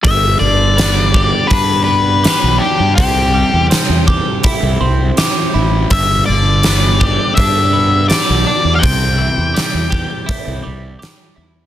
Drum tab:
HH |o-o-o-o-|o-o-o-o-|o-o-o-o-|o-o-o-o-|
SD |--o---o-|--o---o-|--o---o-|--o---o-|
BD |o--oo---|o--oo---|o--oo---|o--oo---|